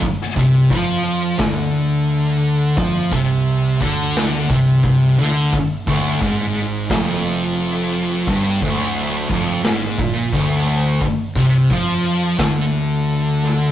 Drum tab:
HH |o-o-o-o-|o-o-o-o-|o-o-o-o-|o-o-o-o-|
SD |----o---|----o--o|----o---|----o---|
BD |ooo-o---|oo-o-oo-|ooo-o---|oo-o-oo-|

HH |o-o-o-o-|
SD |----o--o|
BD |ooo-o---|